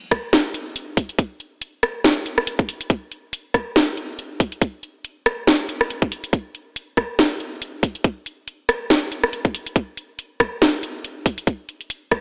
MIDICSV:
0, 0, Header, 1, 2, 480
1, 0, Start_track
1, 0, Tempo, 428571
1, 1328, Time_signature, 4, 2, 24, 8
1, 13672, End_track
2, 0, Start_track
2, 0, Title_t, "Drums"
2, 128, Note_on_c, 9, 36, 60
2, 129, Note_on_c, 9, 37, 79
2, 129, Note_on_c, 9, 42, 55
2, 240, Note_off_c, 9, 36, 0
2, 241, Note_off_c, 9, 37, 0
2, 241, Note_off_c, 9, 42, 0
2, 369, Note_on_c, 9, 38, 113
2, 369, Note_on_c, 9, 42, 80
2, 481, Note_off_c, 9, 38, 0
2, 481, Note_off_c, 9, 42, 0
2, 608, Note_on_c, 9, 42, 56
2, 720, Note_off_c, 9, 42, 0
2, 849, Note_on_c, 9, 42, 85
2, 961, Note_off_c, 9, 42, 0
2, 1088, Note_on_c, 9, 36, 105
2, 1089, Note_on_c, 9, 46, 97
2, 1200, Note_off_c, 9, 36, 0
2, 1201, Note_off_c, 9, 46, 0
2, 1223, Note_on_c, 9, 42, 65
2, 1328, Note_on_c, 9, 36, 118
2, 1329, Note_off_c, 9, 42, 0
2, 1329, Note_on_c, 9, 42, 81
2, 1440, Note_off_c, 9, 36, 0
2, 1441, Note_off_c, 9, 42, 0
2, 1569, Note_on_c, 9, 42, 54
2, 1681, Note_off_c, 9, 42, 0
2, 1809, Note_on_c, 9, 42, 86
2, 1921, Note_off_c, 9, 42, 0
2, 2050, Note_on_c, 9, 37, 72
2, 2050, Note_on_c, 9, 42, 56
2, 2162, Note_off_c, 9, 37, 0
2, 2162, Note_off_c, 9, 42, 0
2, 2290, Note_on_c, 9, 38, 114
2, 2290, Note_on_c, 9, 42, 81
2, 2402, Note_off_c, 9, 38, 0
2, 2402, Note_off_c, 9, 42, 0
2, 2530, Note_on_c, 9, 42, 55
2, 2642, Note_off_c, 9, 42, 0
2, 2663, Note_on_c, 9, 37, 74
2, 2769, Note_on_c, 9, 42, 87
2, 2775, Note_off_c, 9, 37, 0
2, 2881, Note_off_c, 9, 42, 0
2, 2901, Note_on_c, 9, 36, 107
2, 3009, Note_on_c, 9, 46, 96
2, 3013, Note_off_c, 9, 36, 0
2, 3121, Note_off_c, 9, 46, 0
2, 3143, Note_on_c, 9, 42, 67
2, 3247, Note_on_c, 9, 36, 115
2, 3249, Note_off_c, 9, 42, 0
2, 3249, Note_on_c, 9, 42, 82
2, 3359, Note_off_c, 9, 36, 0
2, 3361, Note_off_c, 9, 42, 0
2, 3489, Note_on_c, 9, 42, 54
2, 3601, Note_off_c, 9, 42, 0
2, 3729, Note_on_c, 9, 42, 84
2, 3841, Note_off_c, 9, 42, 0
2, 3968, Note_on_c, 9, 36, 66
2, 3969, Note_on_c, 9, 37, 70
2, 3969, Note_on_c, 9, 42, 55
2, 4080, Note_off_c, 9, 36, 0
2, 4081, Note_off_c, 9, 37, 0
2, 4081, Note_off_c, 9, 42, 0
2, 4210, Note_on_c, 9, 38, 123
2, 4210, Note_on_c, 9, 42, 79
2, 4322, Note_off_c, 9, 38, 0
2, 4322, Note_off_c, 9, 42, 0
2, 4450, Note_on_c, 9, 42, 53
2, 4562, Note_off_c, 9, 42, 0
2, 4690, Note_on_c, 9, 42, 78
2, 4802, Note_off_c, 9, 42, 0
2, 4929, Note_on_c, 9, 36, 117
2, 4931, Note_on_c, 9, 46, 94
2, 5041, Note_off_c, 9, 36, 0
2, 5043, Note_off_c, 9, 46, 0
2, 5063, Note_on_c, 9, 42, 63
2, 5169, Note_off_c, 9, 42, 0
2, 5169, Note_on_c, 9, 36, 117
2, 5169, Note_on_c, 9, 42, 75
2, 5281, Note_off_c, 9, 36, 0
2, 5281, Note_off_c, 9, 42, 0
2, 5411, Note_on_c, 9, 42, 51
2, 5523, Note_off_c, 9, 42, 0
2, 5651, Note_on_c, 9, 42, 80
2, 5763, Note_off_c, 9, 42, 0
2, 5892, Note_on_c, 9, 37, 78
2, 5892, Note_on_c, 9, 42, 53
2, 6004, Note_off_c, 9, 37, 0
2, 6004, Note_off_c, 9, 42, 0
2, 6131, Note_on_c, 9, 38, 123
2, 6131, Note_on_c, 9, 42, 78
2, 6243, Note_off_c, 9, 38, 0
2, 6243, Note_off_c, 9, 42, 0
2, 6372, Note_on_c, 9, 42, 55
2, 6484, Note_off_c, 9, 42, 0
2, 6505, Note_on_c, 9, 37, 73
2, 6613, Note_on_c, 9, 42, 80
2, 6617, Note_off_c, 9, 37, 0
2, 6725, Note_off_c, 9, 42, 0
2, 6743, Note_on_c, 9, 36, 103
2, 6852, Note_on_c, 9, 46, 88
2, 6855, Note_off_c, 9, 36, 0
2, 6964, Note_off_c, 9, 46, 0
2, 6986, Note_on_c, 9, 42, 61
2, 7089, Note_on_c, 9, 36, 112
2, 7093, Note_off_c, 9, 42, 0
2, 7093, Note_on_c, 9, 42, 76
2, 7201, Note_off_c, 9, 36, 0
2, 7205, Note_off_c, 9, 42, 0
2, 7333, Note_on_c, 9, 42, 49
2, 7445, Note_off_c, 9, 42, 0
2, 7573, Note_on_c, 9, 42, 79
2, 7685, Note_off_c, 9, 42, 0
2, 7809, Note_on_c, 9, 36, 61
2, 7814, Note_on_c, 9, 37, 79
2, 7814, Note_on_c, 9, 42, 49
2, 7921, Note_off_c, 9, 36, 0
2, 7926, Note_off_c, 9, 37, 0
2, 7926, Note_off_c, 9, 42, 0
2, 8051, Note_on_c, 9, 38, 114
2, 8051, Note_on_c, 9, 42, 75
2, 8163, Note_off_c, 9, 38, 0
2, 8163, Note_off_c, 9, 42, 0
2, 8290, Note_on_c, 9, 42, 51
2, 8402, Note_off_c, 9, 42, 0
2, 8531, Note_on_c, 9, 42, 75
2, 8643, Note_off_c, 9, 42, 0
2, 8769, Note_on_c, 9, 36, 108
2, 8770, Note_on_c, 9, 46, 89
2, 8881, Note_off_c, 9, 36, 0
2, 8882, Note_off_c, 9, 46, 0
2, 8905, Note_on_c, 9, 42, 60
2, 9009, Note_on_c, 9, 36, 113
2, 9011, Note_off_c, 9, 42, 0
2, 9011, Note_on_c, 9, 42, 75
2, 9121, Note_off_c, 9, 36, 0
2, 9123, Note_off_c, 9, 42, 0
2, 9252, Note_on_c, 9, 42, 49
2, 9364, Note_off_c, 9, 42, 0
2, 9493, Note_on_c, 9, 42, 77
2, 9605, Note_off_c, 9, 42, 0
2, 9731, Note_on_c, 9, 37, 82
2, 9731, Note_on_c, 9, 42, 50
2, 9843, Note_off_c, 9, 37, 0
2, 9843, Note_off_c, 9, 42, 0
2, 9970, Note_on_c, 9, 38, 109
2, 9970, Note_on_c, 9, 42, 76
2, 10082, Note_off_c, 9, 38, 0
2, 10082, Note_off_c, 9, 42, 0
2, 10211, Note_on_c, 9, 42, 51
2, 10323, Note_off_c, 9, 42, 0
2, 10343, Note_on_c, 9, 37, 79
2, 10450, Note_on_c, 9, 42, 81
2, 10455, Note_off_c, 9, 37, 0
2, 10562, Note_off_c, 9, 42, 0
2, 10582, Note_on_c, 9, 36, 99
2, 10691, Note_on_c, 9, 46, 92
2, 10694, Note_off_c, 9, 36, 0
2, 10803, Note_off_c, 9, 46, 0
2, 10824, Note_on_c, 9, 42, 60
2, 10929, Note_on_c, 9, 36, 112
2, 10931, Note_off_c, 9, 42, 0
2, 10931, Note_on_c, 9, 42, 79
2, 11041, Note_off_c, 9, 36, 0
2, 11043, Note_off_c, 9, 42, 0
2, 11170, Note_on_c, 9, 42, 51
2, 11282, Note_off_c, 9, 42, 0
2, 11410, Note_on_c, 9, 42, 80
2, 11522, Note_off_c, 9, 42, 0
2, 11648, Note_on_c, 9, 36, 60
2, 11651, Note_on_c, 9, 37, 82
2, 11651, Note_on_c, 9, 42, 52
2, 11760, Note_off_c, 9, 36, 0
2, 11763, Note_off_c, 9, 37, 0
2, 11763, Note_off_c, 9, 42, 0
2, 11892, Note_on_c, 9, 38, 111
2, 11892, Note_on_c, 9, 42, 75
2, 12004, Note_off_c, 9, 38, 0
2, 12004, Note_off_c, 9, 42, 0
2, 12131, Note_on_c, 9, 42, 55
2, 12243, Note_off_c, 9, 42, 0
2, 12370, Note_on_c, 9, 42, 79
2, 12482, Note_off_c, 9, 42, 0
2, 12609, Note_on_c, 9, 36, 103
2, 12610, Note_on_c, 9, 46, 98
2, 12721, Note_off_c, 9, 36, 0
2, 12722, Note_off_c, 9, 46, 0
2, 12743, Note_on_c, 9, 42, 61
2, 12848, Note_on_c, 9, 36, 107
2, 12849, Note_off_c, 9, 42, 0
2, 12849, Note_on_c, 9, 42, 78
2, 12960, Note_off_c, 9, 36, 0
2, 12961, Note_off_c, 9, 42, 0
2, 13090, Note_on_c, 9, 42, 54
2, 13202, Note_off_c, 9, 42, 0
2, 13223, Note_on_c, 9, 42, 39
2, 13328, Note_off_c, 9, 42, 0
2, 13328, Note_on_c, 9, 42, 83
2, 13440, Note_off_c, 9, 42, 0
2, 13568, Note_on_c, 9, 36, 60
2, 13570, Note_on_c, 9, 37, 81
2, 13570, Note_on_c, 9, 42, 55
2, 13672, Note_off_c, 9, 36, 0
2, 13672, Note_off_c, 9, 37, 0
2, 13672, Note_off_c, 9, 42, 0
2, 13672, End_track
0, 0, End_of_file